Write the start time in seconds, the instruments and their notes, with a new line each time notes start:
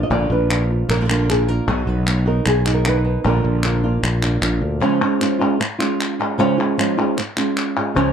Already playing: nylon-string guitar D4
0.03 nylon-string guitar D#5
0.10 fretless electric bass A#1, nylon-string guitar A#2 D3 A#3 D4 F4 D5
0.30 fretless electric bass A#1, nylon-string guitar A#3 D4 F4 B4
0.50 nylon-string guitar D4 F4, clap
0.71 nylon-string guitar F4
0.89 fretless electric bass A#1, nylon-string guitar A#4, muted nylon-string guitar stroke, clap
0.96 nylon-string guitar D3 A#3 D4 F4
1.01 nylon-string guitar D3 A#3 D4 F4
1.05 nylon-string guitar D3 A#3 D4 F4
1.10 nylon-string guitar D3 A#3 D4 F4, clap
1.29 nylon-string guitar D3 A#3 D4 F4 G#4, clap
1.48 nylon-string guitar A#3 D4 F4 A#4
1.68 fretless electric bass B1, nylon-string guitar B2 F#3 B3 D#4 F#4 G#4
1.87 fretless electric bass B1, nylon-string guitar B4
2.06 nylon-string guitar F#3 B3 D#4 F#4 A#4, clap
2.26 nylon-string guitar B3 D#4 F#4 A#4
2.46 fretless electric bass B1, nylon-string guitar G#4, muted nylon-string guitar stroke, clap
2.65 nylon-string guitar B3 D#4 F#4, clap
2.74 nylon-string guitar A#4
2.85 nylon-string guitar D3 B3 D#4 F#4 B4, clap
3.05 nylon-string guitar B2
3.24 fretless electric bass A#1, nylon-string guitar A#2 D3 A#3 D4 F4 A#4
3.44 fretless electric bass A#1
3.63 nylon-string guitar D3 A#3 D4 F4, clap
3.84 nylon-string guitar A#3 D4 F4
4.03 fretless electric bass A#1, nylon-string guitar D4, muted nylon-string guitar stroke, clap
4.23 nylon-string guitar A#3 D4 F4, clap
4.41 fretless electric bass A#1, nylon-string guitar A#3 D4 F4, clap
4.62 fretless electric bass D2
4.80 nylon-string guitar C#3 F3 G#3 C#4 F4
5.01 nylon-string guitar G#3 C#4 F4
5.20 nylon-string guitar F3 G#3 C#4 F4, clap
5.40 nylon-string guitar G#3 C#4 F4
5.60 muted nylon-string guitar stroke, clap
5.79 nylon-string guitar G#3 C#4 F4, clap
6.01 clap
6.19 nylon-string guitar G#3 C#4 F4
6.38 nylon-string guitar C#3 F3 G#3 C#4 F4
6.57 nylon-string guitar G#3 C#4 F4
6.78 nylon-string guitar F3 G#3 C#4 F4, clap
6.98 nylon-string guitar G#3 C#4 F4, clap
7.18 muted nylon-string guitar stroke, clap
7.37 nylon-string guitar G#3 C#4 F4, clap
7.57 clap
7.77 nylon-string guitar G#3 C#4 F4
7.96 fretless electric bass C#2, nylon-string guitar C#3 F3 G#3 C#4 F4